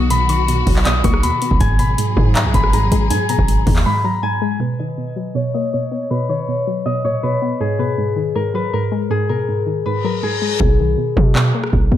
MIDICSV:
0, 0, Header, 1, 7, 480
1, 0, Start_track
1, 0, Key_signature, 5, "major"
1, 0, Tempo, 375000
1, 134, Time_signature, 4, 2, 24, 8
1, 15327, End_track
2, 0, Start_track
2, 0, Title_t, "Harp"
2, 0, Program_c, 0, 46
2, 0, Note_on_c, 0, 85, 73
2, 0, Note_on_c, 0, 87, 87
2, 133, Note_on_c, 0, 83, 90
2, 371, Note_off_c, 0, 85, 0
2, 376, Note_on_c, 0, 85, 85
2, 920, Note_off_c, 0, 87, 0
2, 1092, Note_on_c, 0, 87, 96
2, 1332, Note_off_c, 0, 85, 0
2, 1337, Note_on_c, 0, 85, 88
2, 1569, Note_off_c, 0, 83, 0
2, 1575, Note_on_c, 0, 83, 84
2, 2053, Note_on_c, 0, 80, 83
2, 2287, Note_off_c, 0, 83, 0
2, 2293, Note_on_c, 0, 83, 76
2, 2599, Note_off_c, 0, 87, 0
2, 2952, Note_off_c, 0, 85, 0
2, 3014, Note_on_c, 0, 82, 90
2, 3091, Note_off_c, 0, 83, 0
2, 3256, Note_on_c, 0, 83, 91
2, 3333, Note_off_c, 0, 82, 0
2, 3499, Note_on_c, 0, 82, 79
2, 3576, Note_off_c, 0, 83, 0
2, 3969, Note_off_c, 0, 80, 0
2, 3974, Note_on_c, 0, 80, 90
2, 4210, Note_off_c, 0, 82, 0
2, 4215, Note_on_c, 0, 82, 77
2, 4936, Note_on_c, 0, 83, 78
2, 5012, Note_off_c, 0, 82, 0
2, 5178, Note_on_c, 0, 82, 75
2, 5255, Note_off_c, 0, 83, 0
2, 5407, Note_off_c, 0, 80, 0
2, 5413, Note_on_c, 0, 80, 84
2, 5891, Note_on_c, 0, 71, 85
2, 5968, Note_off_c, 0, 82, 0
2, 6135, Note_on_c, 0, 75, 81
2, 6850, Note_on_c, 0, 73, 70
2, 7089, Note_off_c, 0, 75, 0
2, 7094, Note_on_c, 0, 75, 86
2, 7329, Note_off_c, 0, 73, 0
2, 7333, Note_off_c, 0, 80, 0
2, 7335, Note_on_c, 0, 73, 68
2, 7809, Note_off_c, 0, 71, 0
2, 7814, Note_on_c, 0, 71, 87
2, 8050, Note_off_c, 0, 73, 0
2, 8055, Note_on_c, 0, 73, 78
2, 8771, Note_off_c, 0, 75, 0
2, 8776, Note_on_c, 0, 75, 89
2, 9013, Note_off_c, 0, 73, 0
2, 9018, Note_on_c, 0, 73, 82
2, 9250, Note_off_c, 0, 71, 0
2, 9255, Note_on_c, 0, 71, 81
2, 9734, Note_on_c, 0, 68, 81
2, 9969, Note_off_c, 0, 71, 0
2, 9974, Note_on_c, 0, 71, 73
2, 10694, Note_on_c, 0, 70, 86
2, 10770, Note_off_c, 0, 71, 0
2, 10941, Note_on_c, 0, 71, 82
2, 11017, Note_off_c, 0, 70, 0
2, 11059, Note_off_c, 0, 75, 0
2, 11179, Note_on_c, 0, 70, 75
2, 11256, Note_off_c, 0, 71, 0
2, 11465, Note_off_c, 0, 73, 0
2, 11650, Note_off_c, 0, 68, 0
2, 11655, Note_on_c, 0, 68, 86
2, 11890, Note_off_c, 0, 70, 0
2, 11895, Note_on_c, 0, 70, 76
2, 12616, Note_on_c, 0, 71, 73
2, 12693, Note_off_c, 0, 70, 0
2, 12860, Note_on_c, 0, 70, 70
2, 12936, Note_off_c, 0, 71, 0
2, 13091, Note_off_c, 0, 68, 0
2, 13096, Note_on_c, 0, 68, 80
2, 15327, Note_off_c, 0, 68, 0
2, 15327, Note_off_c, 0, 70, 0
2, 15327, End_track
3, 0, Start_track
3, 0, Title_t, "String section"
3, 0, Program_c, 1, 48
3, 0, Note_on_c, 1, 47, 78
3, 0, Note_on_c, 1, 51, 84
3, 0, Note_on_c, 1, 66, 95
3, 2015, Note_off_c, 1, 51, 0
3, 2015, Note_off_c, 1, 66, 0
3, 2053, Note_on_c, 1, 54, 86
3, 2054, Note_on_c, 1, 68, 95
3, 5843, Note_off_c, 1, 47, 0
3, 5855, Note_off_c, 1, 54, 0
3, 5856, Note_off_c, 1, 68, 0
3, 15327, End_track
4, 0, Start_track
4, 0, Title_t, "Synth pluck"
4, 0, Program_c, 2, 84
4, 0, Note_on_c, 2, 54, 87
4, 0, Note_on_c, 2, 58, 91
4, 0, Note_on_c, 2, 59, 87
4, 131, Note_off_c, 2, 54, 0
4, 136, Note_on_c, 2, 47, 99
4, 373, Note_on_c, 2, 51, 77
4, 600, Note_off_c, 2, 47, 0
4, 615, Note_off_c, 2, 58, 0
4, 615, Note_on_c, 2, 47, 85
4, 861, Note_on_c, 2, 54, 93
4, 1079, Note_off_c, 2, 47, 0
4, 1092, Note_off_c, 2, 59, 0
4, 1095, Note_on_c, 2, 47, 85
4, 1336, Note_on_c, 2, 58, 90
4, 1562, Note_off_c, 2, 47, 0
4, 1574, Note_off_c, 2, 51, 0
4, 1578, Note_on_c, 2, 47, 93
4, 1817, Note_on_c, 2, 59, 91
4, 2054, Note_on_c, 2, 44, 96
4, 2055, Note_off_c, 2, 58, 0
4, 2056, Note_off_c, 2, 47, 0
4, 2056, Note_off_c, 2, 59, 0
4, 2058, Note_off_c, 2, 54, 0
4, 2290, Note_on_c, 2, 47, 86
4, 2521, Note_off_c, 2, 44, 0
4, 2536, Note_on_c, 2, 44, 92
4, 2768, Note_on_c, 2, 51, 91
4, 2998, Note_off_c, 2, 44, 0
4, 3013, Note_on_c, 2, 44, 90
4, 3251, Note_on_c, 2, 54, 85
4, 3483, Note_off_c, 2, 44, 0
4, 3492, Note_off_c, 2, 47, 0
4, 3499, Note_on_c, 2, 44, 90
4, 3734, Note_on_c, 2, 56, 98
4, 3956, Note_off_c, 2, 44, 0
4, 3971, Note_off_c, 2, 51, 0
4, 3972, Note_on_c, 2, 44, 100
4, 4218, Note_on_c, 2, 47, 83
4, 4445, Note_off_c, 2, 44, 0
4, 4452, Note_off_c, 2, 54, 0
4, 4460, Note_on_c, 2, 44, 81
4, 4690, Note_on_c, 2, 51, 87
4, 4924, Note_off_c, 2, 44, 0
4, 4934, Note_off_c, 2, 56, 0
4, 4940, Note_on_c, 2, 44, 96
4, 5176, Note_on_c, 2, 54, 85
4, 5397, Note_off_c, 2, 44, 0
4, 5413, Note_on_c, 2, 44, 85
4, 5416, Note_off_c, 2, 47, 0
4, 5652, Note_on_c, 2, 56, 92
4, 5885, Note_on_c, 2, 47, 97
4, 5892, Note_off_c, 2, 51, 0
4, 5893, Note_off_c, 2, 44, 0
4, 5893, Note_off_c, 2, 56, 0
4, 5895, Note_off_c, 2, 54, 0
4, 6144, Note_on_c, 2, 51, 82
4, 6354, Note_off_c, 2, 47, 0
4, 6370, Note_on_c, 2, 47, 85
4, 6607, Note_on_c, 2, 54, 85
4, 6831, Note_off_c, 2, 47, 0
4, 6846, Note_on_c, 2, 47, 95
4, 7096, Note_on_c, 2, 58, 87
4, 7327, Note_off_c, 2, 47, 0
4, 7339, Note_off_c, 2, 51, 0
4, 7343, Note_on_c, 2, 47, 82
4, 7571, Note_on_c, 2, 59, 83
4, 7802, Note_off_c, 2, 47, 0
4, 7811, Note_off_c, 2, 54, 0
4, 7818, Note_on_c, 2, 47, 91
4, 8054, Note_on_c, 2, 51, 77
4, 8282, Note_off_c, 2, 47, 0
4, 8295, Note_off_c, 2, 58, 0
4, 8297, Note_on_c, 2, 47, 79
4, 8542, Note_on_c, 2, 54, 84
4, 8761, Note_off_c, 2, 47, 0
4, 8773, Note_off_c, 2, 59, 0
4, 8776, Note_on_c, 2, 47, 87
4, 9016, Note_on_c, 2, 46, 88
4, 9244, Note_off_c, 2, 47, 0
4, 9254, Note_off_c, 2, 51, 0
4, 9259, Note_on_c, 2, 47, 92
4, 9498, Note_on_c, 2, 59, 86
4, 9734, Note_on_c, 2, 44, 93
4, 9735, Note_off_c, 2, 46, 0
4, 9736, Note_off_c, 2, 47, 0
4, 9736, Note_off_c, 2, 59, 0
4, 9738, Note_off_c, 2, 54, 0
4, 9971, Note_on_c, 2, 47, 83
4, 10200, Note_off_c, 2, 44, 0
4, 10216, Note_on_c, 2, 44, 89
4, 10447, Note_on_c, 2, 51, 87
4, 10678, Note_off_c, 2, 44, 0
4, 10694, Note_on_c, 2, 44, 91
4, 10931, Note_on_c, 2, 54, 84
4, 11164, Note_off_c, 2, 44, 0
4, 11172, Note_off_c, 2, 47, 0
4, 11179, Note_on_c, 2, 44, 91
4, 11414, Note_on_c, 2, 56, 94
4, 11637, Note_off_c, 2, 44, 0
4, 11651, Note_off_c, 2, 51, 0
4, 11652, Note_on_c, 2, 44, 95
4, 11898, Note_on_c, 2, 47, 82
4, 12126, Note_off_c, 2, 44, 0
4, 12133, Note_off_c, 2, 54, 0
4, 12141, Note_on_c, 2, 44, 76
4, 12372, Note_on_c, 2, 51, 82
4, 12604, Note_off_c, 2, 44, 0
4, 12614, Note_off_c, 2, 56, 0
4, 12619, Note_on_c, 2, 44, 90
4, 12855, Note_on_c, 2, 54, 83
4, 13077, Note_off_c, 2, 44, 0
4, 13092, Note_on_c, 2, 44, 88
4, 13096, Note_off_c, 2, 47, 0
4, 13331, Note_on_c, 2, 56, 87
4, 13564, Note_on_c, 2, 47, 98
4, 13573, Note_off_c, 2, 44, 0
4, 13573, Note_off_c, 2, 51, 0
4, 13573, Note_off_c, 2, 56, 0
4, 13575, Note_off_c, 2, 54, 0
4, 13825, Note_on_c, 2, 51, 85
4, 14034, Note_off_c, 2, 47, 0
4, 14049, Note_on_c, 2, 47, 84
4, 14288, Note_on_c, 2, 54, 88
4, 14511, Note_off_c, 2, 47, 0
4, 14527, Note_on_c, 2, 47, 97
4, 14776, Note_on_c, 2, 58, 85
4, 15005, Note_off_c, 2, 47, 0
4, 15019, Note_off_c, 2, 51, 0
4, 15020, Note_on_c, 2, 47, 84
4, 15250, Note_on_c, 2, 59, 82
4, 15327, Note_off_c, 2, 47, 0
4, 15327, Note_off_c, 2, 54, 0
4, 15327, Note_off_c, 2, 58, 0
4, 15327, Note_off_c, 2, 59, 0
4, 15327, End_track
5, 0, Start_track
5, 0, Title_t, "808-style bass"
5, 0, Program_c, 3, 38
5, 0, Note_on_c, 3, 35, 108
5, 816, Note_off_c, 3, 35, 0
5, 855, Note_on_c, 3, 35, 105
5, 1315, Note_off_c, 3, 35, 0
5, 1334, Note_on_c, 3, 35, 114
5, 1575, Note_on_c, 3, 39, 100
5, 1594, Note_off_c, 3, 35, 0
5, 1689, Note_off_c, 3, 39, 0
5, 1933, Note_on_c, 3, 35, 99
5, 2049, Note_off_c, 3, 35, 0
5, 2054, Note_on_c, 3, 32, 117
5, 2515, Note_off_c, 3, 32, 0
5, 2775, Note_on_c, 3, 44, 109
5, 3133, Note_on_c, 3, 35, 96
5, 3152, Note_off_c, 3, 44, 0
5, 3248, Note_off_c, 3, 35, 0
5, 3254, Note_on_c, 3, 32, 110
5, 3715, Note_off_c, 3, 32, 0
5, 3734, Note_on_c, 3, 32, 110
5, 3975, Note_on_c, 3, 44, 101
5, 3994, Note_off_c, 3, 32, 0
5, 4088, Note_off_c, 3, 44, 0
5, 4334, Note_on_c, 3, 32, 108
5, 4680, Note_off_c, 3, 32, 0
5, 4695, Note_on_c, 3, 39, 102
5, 4925, Note_off_c, 3, 39, 0
5, 13574, Note_on_c, 3, 35, 111
5, 14035, Note_off_c, 3, 35, 0
5, 14295, Note_on_c, 3, 47, 104
5, 14755, Note_off_c, 3, 47, 0
5, 15014, Note_on_c, 3, 35, 102
5, 15245, Note_off_c, 3, 35, 0
5, 15253, Note_on_c, 3, 35, 110
5, 15327, Note_off_c, 3, 35, 0
5, 15327, End_track
6, 0, Start_track
6, 0, Title_t, "Reverse cymbal"
6, 0, Program_c, 4, 119
6, 12615, Note_on_c, 4, 60, 83
6, 13575, Note_off_c, 4, 60, 0
6, 15327, End_track
7, 0, Start_track
7, 0, Title_t, "Drums"
7, 134, Note_on_c, 9, 42, 76
7, 262, Note_off_c, 9, 42, 0
7, 373, Note_on_c, 9, 42, 81
7, 501, Note_off_c, 9, 42, 0
7, 619, Note_on_c, 9, 42, 82
7, 747, Note_off_c, 9, 42, 0
7, 855, Note_on_c, 9, 36, 103
7, 855, Note_on_c, 9, 46, 56
7, 974, Note_on_c, 9, 39, 75
7, 983, Note_off_c, 9, 36, 0
7, 983, Note_off_c, 9, 46, 0
7, 1092, Note_on_c, 9, 42, 88
7, 1094, Note_off_c, 9, 39, 0
7, 1094, Note_on_c, 9, 39, 114
7, 1220, Note_off_c, 9, 42, 0
7, 1222, Note_off_c, 9, 39, 0
7, 1333, Note_on_c, 9, 36, 99
7, 1333, Note_on_c, 9, 42, 79
7, 1454, Note_on_c, 9, 37, 89
7, 1461, Note_off_c, 9, 36, 0
7, 1461, Note_off_c, 9, 42, 0
7, 1579, Note_on_c, 9, 42, 84
7, 1582, Note_off_c, 9, 37, 0
7, 1707, Note_off_c, 9, 42, 0
7, 1814, Note_on_c, 9, 42, 81
7, 1933, Note_on_c, 9, 36, 102
7, 1942, Note_off_c, 9, 42, 0
7, 2054, Note_off_c, 9, 36, 0
7, 2054, Note_on_c, 9, 36, 112
7, 2054, Note_on_c, 9, 42, 72
7, 2182, Note_off_c, 9, 36, 0
7, 2182, Note_off_c, 9, 42, 0
7, 2292, Note_on_c, 9, 42, 80
7, 2420, Note_off_c, 9, 42, 0
7, 2538, Note_on_c, 9, 42, 85
7, 2666, Note_off_c, 9, 42, 0
7, 2775, Note_on_c, 9, 36, 104
7, 2903, Note_off_c, 9, 36, 0
7, 3013, Note_on_c, 9, 42, 86
7, 3014, Note_on_c, 9, 39, 116
7, 3141, Note_off_c, 9, 42, 0
7, 3142, Note_off_c, 9, 39, 0
7, 3254, Note_on_c, 9, 36, 103
7, 3254, Note_on_c, 9, 42, 79
7, 3374, Note_on_c, 9, 37, 89
7, 3382, Note_off_c, 9, 36, 0
7, 3382, Note_off_c, 9, 42, 0
7, 3499, Note_on_c, 9, 42, 83
7, 3502, Note_off_c, 9, 37, 0
7, 3627, Note_off_c, 9, 42, 0
7, 3734, Note_on_c, 9, 42, 81
7, 3862, Note_off_c, 9, 42, 0
7, 3974, Note_on_c, 9, 42, 73
7, 4102, Note_off_c, 9, 42, 0
7, 4212, Note_on_c, 9, 42, 82
7, 4334, Note_on_c, 9, 36, 103
7, 4340, Note_off_c, 9, 42, 0
7, 4459, Note_on_c, 9, 42, 85
7, 4462, Note_off_c, 9, 36, 0
7, 4587, Note_off_c, 9, 42, 0
7, 4695, Note_on_c, 9, 36, 100
7, 4695, Note_on_c, 9, 46, 55
7, 4815, Note_on_c, 9, 39, 76
7, 4823, Note_off_c, 9, 36, 0
7, 4823, Note_off_c, 9, 46, 0
7, 4943, Note_off_c, 9, 39, 0
7, 13575, Note_on_c, 9, 36, 115
7, 13703, Note_off_c, 9, 36, 0
7, 14295, Note_on_c, 9, 36, 95
7, 14423, Note_off_c, 9, 36, 0
7, 14535, Note_on_c, 9, 39, 110
7, 14663, Note_off_c, 9, 39, 0
7, 14894, Note_on_c, 9, 37, 87
7, 15014, Note_on_c, 9, 36, 86
7, 15022, Note_off_c, 9, 37, 0
7, 15142, Note_off_c, 9, 36, 0
7, 15327, End_track
0, 0, End_of_file